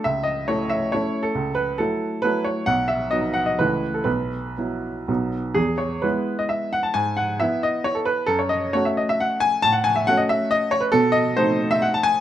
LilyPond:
<<
  \new Staff \with { instrumentName = "Grand piano" } { \time 3/4 \key e \major \tempo 4 = 134 e''8 dis''8 cis''8 e''8 cis''8. a'16~ | a'8 b'8 a'4 b'8 cis''8 | fis''8 e''8 dis''8 fis''16 dis''16 b'8. a'16 | b'2 r4 |
gis'8 cis''8 b'8. dis''16 e''8 fis''16 a''16 | gis''8 fis''8 e''8 dis''8 cis''16 a'16 b'8 | a'16 cis''16 dis''8 cis''16 e''16 dis''16 e''16 fis''8 gis''8 | a''16 fis''16 gis''16 e''16 fis''16 dis''16 e''8 dis''8 cis''16 b'16 |
a'8 dis''8 c''8. e''16 fis''16 a''16 gis''8 | }
  \new Staff \with { instrumentName = "Grand piano" } { \time 3/4 \key e \major cis,4 <a cis' e'>4 <a cis' e'>4 | cis,4 <fis a e'>4 <fis a e'>4 | b,,4 <fis b dis'>4 <cis, e a e'>4 | b,,4 <fis b e'>4 <b,, fis b dis'>4 |
e,4 <gis b e'>2 | gis,4 <b e'>2 | fis,4 <a cis' fis'>2 | a,4 <a cis' fis'>2 |
b,4 <a c' dis'>2 | }
>>